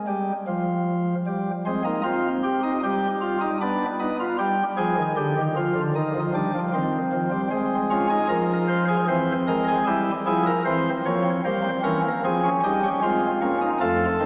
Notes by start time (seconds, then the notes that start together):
0.07 G3
0.47 F3
1.27 G3
1.66 G#3 C4
1.84 A#3 D#4
2.03 C4 F4
2.43 G4
2.63 D#4
2.83 G3 G4
3.21 F4
3.41 D#4
3.61 B3 D4
3.99 B3 D#4
4.20 F4
4.38 G3 G4
4.77 F3 G#4
4.97 D#3
5.16 D3 G4
5.37 D#3
5.56 F3 F4
5.76 D3
5.95 D#3 D#4
6.15 F3
6.34 G3 D4
6.54 F3
6.74 D#3 C4
7.12 F3
7.31 G3
7.50 G#3 C4
7.90 C#4 F4
8.10 D#4 G#4
8.29 F3 F4 A#4
8.68 C5
8.88 G#4
9.08 E3 C4 C5
9.48 G#3 A#4
9.68 G#4
9.87 G3 E4 G4
10.26 F3 E4 G#4
10.46 A#4
10.65 E3 C4 C5
11.05 F3 A#3 C#5
11.25 C4
11.45 G3 A#3 C5
11.63 C4
11.83 E3 C#4 A#4
12.04 A#3
12.24 F3 C4 G#4
12.44 C#4
12.63 G3 D#4 G4
12.83 C#4
13.02 G#3 C4 F4
13.41 A#3 C#4
13.61 D#4
13.80 F2 F3 A3 F4 A4
14.20 D#2 D#3 C4